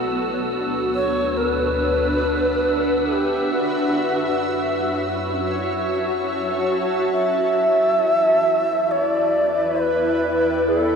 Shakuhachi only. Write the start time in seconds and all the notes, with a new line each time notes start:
0.94 C#5
1.37 A#4
1.49 B4
3.08 A4
3.13 G4
3.53 F#4
7.12 E5
8.91 C#5
9.04 D5
9.80 B4
10.68 A4